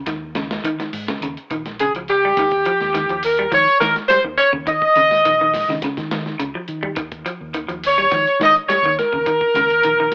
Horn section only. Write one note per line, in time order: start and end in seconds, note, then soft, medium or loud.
1.79 1.93 G#4 medium
2.10 3.20 G4 medium
3.25 3.51 A#4 medium
3.54 3.80 C#5 loud
3.81 3.94 A#4 medium
4.08 4.21 C5 loud
4.38 4.51 C#5 medium
4.68 5.78 D#5 loud
7.87 8.38 C#5 loud
8.44 8.56 D#5 loud
8.69 8.95 C#5 loud
8.98 10.14 A#4 medium